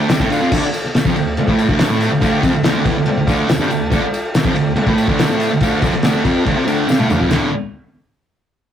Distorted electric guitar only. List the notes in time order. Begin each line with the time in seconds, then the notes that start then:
0.09 C3 C4
0.20 A2 A3
0.30 D2 D3
0.41 F2 F3
0.52 D2 D3
0.62 muted distorted electric guitar stroke
1.05 F2 F3
1.15 D2
1.38 muted distorted electric guitar stroke
1.48 A2 A3
1.69 D2 D3
1.89 A2 A3
2.11 D2
2.21 D2 D3
2.43 F2 F3
2.53 D2
2.63 D2 D3
2.86 E2 E3
2.96 D2
3.07 muted distorted electric guitar stroke
3.17 D2
3.27 D2 D3
3.48 D2
3.59 G2 G3
3.69 D2
3.90 D2 D3
4.01 muted distorted electric guitar stroke
4.43 F2 F3
4.55 D2
4.76 muted distorted electric guitar stroke
4.86 A2 A3
5.08 D2 D3
5.30 A2 A3
5.52 D2
5.62 D2 D3
5.83 F2 F3
5.94 D2
6.04 D2 D3
6.24 F2 F3
6.45 D2 D3
6.56 C3 C4
6.66 D2 D3
6.88 C3 C4
6.99 A2 A3
7.10 D2 D3
7.20 F2 F3
7.30 D2 A2 D3